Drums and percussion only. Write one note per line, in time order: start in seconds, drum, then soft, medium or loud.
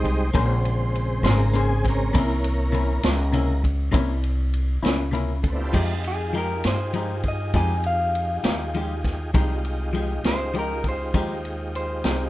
0.05 kick medium
0.05 ride medium
0.35 kick loud
0.35 ride medium
0.65 ride medium
0.95 ride medium
1.24 snare loud
1.24 ride medium
1.55 ride medium
1.85 kick medium
1.85 snare soft
1.85 ride medium
2.15 kick loud
2.15 ride loud
2.44 ride medium
2.74 ride medium
3.03 snare loud
3.03 ride medium
3.34 ride medium
3.64 kick medium
3.64 ride medium
3.94 kick loud
3.94 ride medium
4.24 ride soft
4.54 ride medium
4.85 snare loud
4.85 ride medium
5.15 ride medium
5.44 kick medium
5.44 ride medium
5.74 kick loud
5.74 crash medium
6.04 ride medium
6.35 ride medium
6.64 snare medium
6.64 ride medium
6.94 ride medium
7.23 kick medium
7.23 ride medium
7.54 kick loud
7.54 ride medium
7.84 ride soft
8.15 ride medium
8.44 snare loud
8.44 ride medium
8.74 ride soft
9.04 kick medium
9.04 snare soft
9.04 ride medium
9.34 kick loud
9.34 ride medium
9.65 ride medium
9.95 ride soft
10.24 snare loud
10.24 ride medium
10.55 ride medium
10.84 kick medium
10.84 ride medium
11.14 kick medium
11.14 ride medium
11.45 ride medium
11.75 ride medium
12.04 snare medium
12.04 ride medium